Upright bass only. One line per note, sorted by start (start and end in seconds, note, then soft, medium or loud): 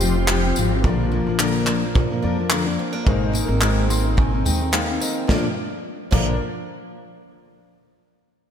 0.00 0.52 F1 loud
0.57 0.83 G#1 medium
0.84 1.23 A#1 loud
1.26 2.20 A#1 medium
2.24 2.75 F2 medium
3.07 3.45 G#1 loud
3.48 4.42 G#1 medium
4.45 4.97 D#2 medium
5.29 5.45 A#1 medium
6.12 6.38 A#1 medium